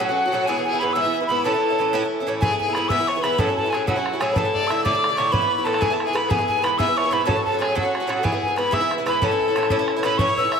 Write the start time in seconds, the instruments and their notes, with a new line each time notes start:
Already playing: tin whistle F#5
0.00 bouzouki C#4 F#4, fiddle F#4
0.09 bouzouki F#3 C#4 F#4
0.26 bouzouki F#3 C#4 F#4
0.32 bouzouki A2 F#3 C#4 F#4
0.46 bouzouki G#2 E3 B3 E4, fiddle G#4, tin whistle G#5
0.56 bouzouki E3 B3 E4
0.64 fiddle G#4, tin whistle G#5
0.73 bouzouki E3 B3 E4
0.79 bouzouki G#2 E3 B3 E4, fiddle C#5, tin whistle B5
0.84 fiddle B4
0.93 bouzouki G#2 E3 B3, tin whistle E6
0.97 bouzouki E4, fiddle E5
1.04 bouzouki E3 B3 E4
1.20 bouzouki E3 B3 E4
1.27 bouzouki G#2 E3 B3, tin whistle B5
1.32 bouzouki E4, fiddle B4
1.44 bouzouki A2 E3 C#4 E4, fiddle A4, tin whistle A5
1.54 bouzouki E3 C#4 E4
1.70 bouzouki E3 C#4 E4
1.79 bouzouki A2 E3 C#4 E4
1.93 bouzouki A2 E3 C#4 E4
2.03 bouzouki E3 C#4 E4
2.20 bouzouki E3 C#4 E4
2.27 bouzouki A2 E3 C#4 E4
2.41 bouzouki G#2 E3 B3 E4, fiddle G#4, tin whistle G#5, bodhran
2.51 bouzouki E3 B3 E4
2.58 fiddle G#4, tin whistle G#5, bodhran
2.68 bouzouki E3 B3 E4
2.73 bouzouki G#2 E3, tin whistle B5, bodhran
2.77 bouzouki B3 E4
2.89 bouzouki G#2 E3 B3 E4, fiddle E5, tin whistle E6, bodhran
2.99 bouzouki E3 B3 E4
3.07 fiddle C#5, tin whistle C#6, bodhran
3.16 bouzouki E3 B3 E4
3.23 bouzouki G#2 E3 B3 E4, fiddle B4, tin whistle B5, bodhran
3.38 bouzouki A2 F#3 C#4 E4, fiddle A4, tin whistle A5, bodhran
3.47 bouzouki F#3 C#4 E4
3.57 fiddle A4, tin whistle A5, bodhran
3.64 bouzouki F#3 C#4 E4
3.70 bouzouki A2 F#3, fiddle G#4, tin whistle G#5, bodhran
3.74 bouzouki C#4 E4
3.87 bouzouki A2 F#3 C#4 E4, fiddle F#4, tin whistle F#5, bodhran
3.96 bouzouki F#3 C#4 E4
4.06 bodhran
4.13 bouzouki F#3 C#4 E4
4.20 bouzouki A2 F#3 C#4 E4, fiddle G#4, tin whistle G#5, bodhran
4.33 bouzouki A2 D3, fiddle A4 B4, tin whistle A5, bodhran
4.37 bouzouki A3 E4
4.45 bouzouki D3 A3 E4
4.54 fiddle D5, bodhran
4.62 bouzouki D3 A3 E4
4.67 bouzouki A2 D3, fiddle E5, tin whistle E6, bodhran
4.71 bouzouki A3 E4
4.85 bouzouki A2 D3 A3 E4, fiddle D5, tin whistle D6, bodhran
4.93 bouzouki D3 A3 E4
5.04 bodhran
5.09 bouzouki D3 A3 E4
5.17 bouzouki A2 D3 A3 E4, fiddle C#5, tin whistle C#6, bodhran
5.32 bouzouki A2 E3 B3 E4, fiddle B4, tin whistle B5, bodhran
5.41 bouzouki E3 B3 E4
5.58 bouzouki E3 B3 E4
5.65 bouzouki A2 E3 B3 E4, fiddle A4, tin whistle A5, bodhran
5.74 bodhran
5.81 bouzouki G#2 E3 B3 E4, fiddle G#4, tin whistle G#5, bodhran
5.90 bouzouki E3 B3 E4, tin whistle A5
6.00 bodhran
6.05 bouzouki B3 E4, fiddle G#4, tin whistle G#5
6.09 bouzouki E3
6.13 bouzouki G#2 E3 B3 E4, fiddle B4, tin whistle B5, bodhran
6.29 bouzouki G#2 E3 B3 E4, fiddle G#4, tin whistle G#5, bodhran
6.39 bouzouki E3 B3 E4
6.48 tin whistle G#5, bodhran
6.56 bouzouki E3 B3 E4
6.62 bouzouki G#2 E3 B3 E4, fiddle B4, tin whistle B5, bodhran
6.78 bouzouki G#2 E3 B3 E4, fiddle E5, tin whistle E6, bodhran
6.87 bouzouki E3 B3 E4
6.97 fiddle C#5, tin whistle C#6, bodhran
7.04 bouzouki E3 B3 E4
7.11 bouzouki G#2 E3 B3 E4, fiddle B4, tin whistle B5, bodhran
7.26 bouzouki A2 F#3 C#4 F#4, fiddle A4, tin whistle A5, bodhran
7.35 bouzouki F#3 C#4 F#4
7.44 fiddle A4, tin whistle A5, bodhran
7.52 bouzouki F#3 C#4 F#4
7.59 bouzouki A2 F#3 C#4 F#4, fiddle G#4, tin whistle G#5, bodhran
7.75 bouzouki A2 F#3 C#4 F#4, fiddle F#4, tin whistle F#5, bodhran
7.83 bouzouki F#3 C#4 F#4
7.95 bodhran
8.00 bouzouki F#3 C#4 F#4
8.07 bouzouki A2 F#3 C#4 F#4, bodhran
8.18 fiddle A4
8.23 bouzouki G#2 E3 B3 E4, fiddle G#4, tin whistle G#5, bodhran
8.32 bouzouki E3 B3 E4
8.42 tin whistle G#5, bodhran
8.48 bouzouki E3 B3 E4
8.56 bouzouki G#2 E3 B3 E4, fiddle B4, tin whistle B5, bodhran
8.71 bouzouki G#2 E3 B3 E4, fiddle E5, tin whistle E6, bodhran
8.81 bouzouki E3 B3 E4
8.91 bodhran
8.98 bouzouki E3 B3 E4
9.06 bouzouki G#2 E3 B3 E4, fiddle B4, tin whistle B5, bodhran
9.22 bouzouki A2 E3 C#4 E4, fiddle A4, tin whistle A5, bodhran
9.31 bouzouki E3 C#4 E4
9.40 bodhran
9.48 bouzouki E3 C#4 E4
9.56 bouzouki A2 E3 C#4 E4, bodhran
9.63 bodhran
9.70 bouzouki A2 E3 C#4 E4, bodhran
9.79 bouzouki E3 C#4 E4
9.88 bodhran
9.96 bouzouki E3 C#4 E4
10.03 bouzouki A2 E3 C#4 E4, fiddle B4, tin whistle B5, bodhran
10.18 bouzouki A2 E3 C#4 E4, fiddle C#5, tin whistle C#6, bodhran
10.28 bouzouki E3 C#4 E4
10.37 bouzouki A2 E3 C#4 E4, tin whistle E6, bodhran
10.45 bouzouki E3 C#4 E4
10.51 fiddle E5, tin whistle E6, bodhran